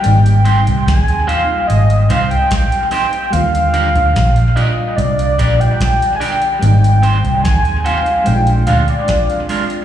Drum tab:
HH |xxxxxxx-xxxxxxox|xxxxxxx-xxxxxxox|xxxxxxxxxxxxxxox|
SD |----o-------o---|----o-------o---|----o-------o---|
BD |----o-------o---|----o-------o---|----o-------o---|